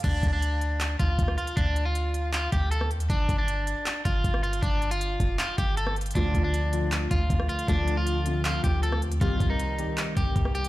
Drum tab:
CC |x-------------------------------|--------------------------------|--------------------------------|--------------------------------|
HH |x---x---x---x---x---x---x---x-x-|x---x---x---x---x---x---x---x-x-|x---x---x---x---x---x---x---x-x-|x---x-x-x---x---x---x---x---xxxx|
CP |----------------x---------------|----------------x---------------|----------------x---------------|----------------x---------------|
SD |--------------------------r-----|--------------------------r-----|--------------------------r-----|--------------------------r-----|
BD |o---o---------------o---o-------|o-------------------o-----------|o---o---------------o---o-------|o-----------o-------o-----------|

CC |--------------------------------|--------------------------------|--------------------------------|
HH |x---x---x---x---x---x---x---x-x-|x---x---x---x---x---x---x---x-x-|x---x---x---x---x---x---x---x-x-|
CP |----------------x---------------|----------------x---------------|----------------x---------------|
SD |--------------------------r-----|--------------------------r-----|--------------------------r-----|
BD |o---o---------------o---o-------|o-------------------o-----------|o---o---------------o---o-------|